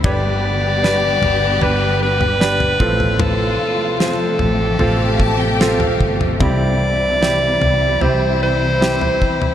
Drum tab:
SD |----o-------o---|----o-------o---|----o-------o---|
FT |o-----o-o--o-o-o|o-----o-o----o-o|o-----o-o----o-o|
BD |o-------------o-|----------o---o-|o-------------o-|